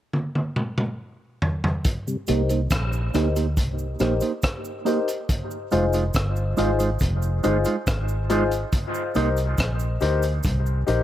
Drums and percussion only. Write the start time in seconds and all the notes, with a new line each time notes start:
0.13 high tom
0.35 high tom
0.56 mid tom
0.78 mid tom
1.42 floor tom
1.64 floor tom
1.85 kick, closed hi-hat, cabasa
2.08 cabasa
2.27 closed hi-hat, cabasa
2.49 closed hi-hat, cabasa
2.70 kick, cross-stick, closed hi-hat, cabasa
2.93 cabasa
3.14 cross-stick, closed hi-hat, cabasa
3.36 closed hi-hat, cabasa
3.57 kick, closed hi-hat, cabasa
3.78 cabasa
3.99 cross-stick, closed hi-hat, cabasa
4.20 closed hi-hat, cabasa
4.42 kick, cross-stick, closed hi-hat, cabasa
4.65 cabasa
4.86 closed hi-hat, cabasa
5.08 closed hi-hat, cabasa
5.29 kick, closed hi-hat, cabasa
5.51 cabasa
5.71 closed hi-hat, cabasa
5.93 closed hi-hat, cabasa
6.14 kick, cross-stick, closed hi-hat, cabasa
6.36 cabasa
6.57 closed hi-hat, cabasa
6.79 closed hi-hat, cabasa
6.99 kick, closed hi-hat, cabasa
7.22 cabasa
7.43 closed hi-hat, cabasa
7.65 closed hi-hat, cabasa
7.87 kick, cross-stick, closed hi-hat, cabasa
8.08 cabasa
8.30 closed hi-hat, cabasa
8.51 closed hi-hat, cabasa
8.72 kick, closed hi-hat, cabasa
8.94 cabasa
9.15 closed hi-hat, cabasa
9.37 closed hi-hat, cabasa
9.58 kick, cross-stick, closed hi-hat, cabasa
9.79 cabasa
10.00 closed hi-hat, cabasa
10.22 closed hi-hat, cabasa
10.43 kick, closed hi-hat, cabasa
10.66 cabasa
10.87 closed hi-hat, cabasa